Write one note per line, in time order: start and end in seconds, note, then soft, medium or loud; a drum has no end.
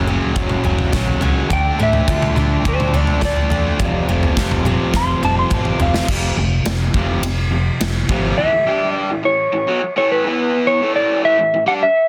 0.00 0.17 F#1 medium
0.00 0.65 F#2 medium
0.00 0.94 A#3 medium
0.00 0.92 F#4 medium
0.07 0.33 F#2 medium
0.07 0.34 C#3 loud
0.07 0.35 F#3 loud
0.07 0.63 C#4 medium
0.34 0.55 F#1 medium
0.34 0.62 F#2 loud
0.34 0.63 C#3 loud
0.34 1.51 F#3 medium
0.34 0.63 F#3 loud
0.34 kick loud
0.34 floor tom medium
0.49 mid tom medium
0.63 0.84 F#1 medium
0.63 0.91 F#2 medium
0.63 0.92 C#3 medium
0.63 0.93 F#3 medium
0.63 1.21 C#4 medium
0.63 floor tom medium
0.79 floor tom medium
0.93 1.12 A#1 medium
0.93 1.19 F#2 loud
0.93 1.20 C#3 loud
0.93 1.21 F#3 medium
0.93 1.50 F#4 medium
0.93 kick loud
0.93 snare medium
0.93 mid tom medium
1.07 floor tom medium
1.21 1.41 C#2 medium
1.21 1.48 F#2 medium
1.21 1.49 C#3 medium
1.21 1.49 F#3 medium
1.21 1.51 C#4 medium
1.21 floor tom medium
1.49 1.70 D2 loud
1.49 1.77 D3 loud
1.49 2.64 D3 medium
1.49 1.78 A3 loud
1.49 1.78 D4 loud
1.49 1.80 G5 loud
1.49 kick loud
1.49 floor tom medium
1.78 1.99 A2 medium
1.78 2.06 D3 medium
1.78 2.07 A3 medium
1.78 4.08 A3 medium
1.78 2.07 D4 medium
1.83 2.64 E5 medium
1.93 floor tom medium
2.07 2.27 D2 medium
2.07 2.34 D3 medium
2.07 2.36 A3 medium
2.07 2.35 D4 medium
2.07 3.22 F4 medium
2.07 kick loud
2.22 floor tom medium
2.22 mid tom medium
2.35 2.56 D2 medium
2.35 2.62 D3 medium
2.35 2.64 A3 medium
2.35 2.64 D4 loud
2.35 2.93 D4 medium
2.35 mid tom medium
2.64 3.03 D2 medium
2.64 2.91 D3 loud
2.64 2.93 A3 medium
2.64 2.93 D4 loud
2.64 kick loud
2.64 floor tom medium
2.69 2.97 C5 medium
2.80 mid tom medium
2.92 3.19 D3 medium
2.92 3.21 A3 medium
2.92 3.20 D4 medium
2.92 3.50 D4 medium
2.92 floor tom medium
2.97 3.23 D5 medium
3.07 floor tom medium
3.20 3.41 D2 medium
3.20 3.48 D3 loud
3.20 3.49 A3 loud
3.20 3.49 D4 medium
3.20 4.37 F4 medium
3.20 kick loud
3.20 snare medium
3.20 mid tom medium
3.25 4.35 D5 loud
3.36 floor tom medium
3.49 3.70 E2 medium
3.49 3.77 D3 medium
3.49 3.79 A3 loud
3.49 3.78 D4 loud
3.49 3.80 D4 medium
3.49 floor tom medium
3.78 3.99 F1 medium
3.78 4.06 F2 loud
3.78 5.23 F2 medium
3.78 4.07 C3 loud
3.78 4.08 F3 loud
3.78 kick loud
3.78 floor tom medium
4.07 4.27 F1 medium
4.07 4.35 F2 medium
4.07 4.35 C3 medium
4.07 4.36 F3 medium
4.07 5.52 A3 medium
4.23 floor tom medium
4.36 4.75 F1 medium
4.36 4.63 F2 medium
4.36 4.64 C3 medium
4.36 4.65 F3 loud
4.36 5.51 F4 medium
4.36 kick loud
4.36 snare medium
4.51 floor tom medium
4.51 mid tom medium
4.65 4.91 F2 medium
4.65 4.93 C3 loud
4.65 4.93 F3 loud
4.65 5.22 C4 medium
4.65 mid tom medium
4.93 5.13 F1 loud
4.93 5.20 F2 medium
4.93 5.21 C3 loud
4.93 5.22 F3 loud
4.93 6.09 F3 medium
4.93 5.23 C6 loud
4.93 kick loud
4.93 snare medium
5.21 5.42 F1 loud
5.21 5.50 F2 medium
5.21 5.50 C3 medium
5.21 5.51 F3 medium
5.21 5.78 C4 medium
5.21 5.38 A5 loud
5.21 mid tom medium
5.39 5.54 C6 medium
5.50 5.70 A1 loud
5.50 5.77 F2 loud
5.50 5.79 C3 loud
5.50 5.79 F3 loud
5.50 6.09 F4 medium
5.50 5.68 A5 medium
5.50 kick loud
5.50 mid tom medium
5.65 5.81 G5 medium
5.65 mid tom medium
5.79 5.99 F1 medium
5.79 6.06 F2 medium
5.79 6.07 C3 medium
5.79 6.07 F3 medium
5.79 6.09 C4 medium
5.79 6.09 F5 medium
5.79 floor tom loud
5.94 snare medium
6.08 6.31 F1 loud
6.08 6.35 F2 medium
6.08 6.35 C3 medium
6.08 6.36 F3 medium
6.08 kick loud
6.08 crash loud
6.37 6.60 F1 medium
6.37 6.63 F2 medium
6.37 6.63 C3 medium
6.65 6.88 F1 medium
6.65 6.91 F2 medium
6.65 6.92 C3 loud
6.65 snare loud
6.65 ride bell medium
6.94 7.17 F1 medium
6.94 7.21 F2 medium
6.94 7.22 C3 loud
6.94 7.22 F3 loud
6.94 kick loud
7.22 7.68 F1 medium
7.22 7.49 F2 medium
7.22 7.49 C3 medium
7.22 ride bell medium
7.51 7.77 F2 medium
7.51 7.77 C3 medium
7.80 8.03 F1 loud
7.80 8.06 F2 medium
7.80 8.06 C3 medium
7.80 snare loud
7.80 ride bell medium
8.09 8.32 G#1 medium
8.09 8.36 F2 medium
8.09 8.36 C3 loud
8.09 8.36 F3 loud
8.09 kick medium
8.38 8.51 A2 medium
8.38 8.51 E3 loud
8.38 8.97 E5 medium
8.52 8.66 A2 medium
8.52 8.66 E3 medium
8.67 9.08 G3 medium
8.67 9.09 D4 medium
8.67 9.09 G4 loud
8.97 9.19 D5 medium
9.10 9.22 A2 medium
9.10 9.22 E3 medium
9.23 9.46 A2 medium
9.23 9.46 E3 medium
9.23 9.97 C#5 medium
9.53 9.67 A2 medium
9.53 9.67 E3 medium
9.67 9.80 B2 medium
9.67 9.81 F#3 loud
9.82 muted overdriven electric guitar stroke medium
9.96 10.23 A2 loud
9.96 10.24 E3 loud
9.96 10.24 A3 loud
9.96 10.10 C#5 loud
10.12 10.69 B4 medium
10.25 10.81 E3 medium
10.25 10.81 B3 loud
10.25 10.82 E4 loud
10.67 10.95 C#5 loud
10.81 11.37 A2 loud
10.81 11.38 E3 medium
10.81 11.38 A3 loud
10.96 11.25 D5 medium
11.25 11.67 E5 loud
11.39 11.52 A2 medium
11.39 11.53 E3 medium
11.54 11.67 A2 medium
11.54 11.66 E3 medium
11.66 11.80 G3 medium
11.66 11.80 D4 loud
11.66 11.73 F#5 loud
11.83 12.08 E5 loud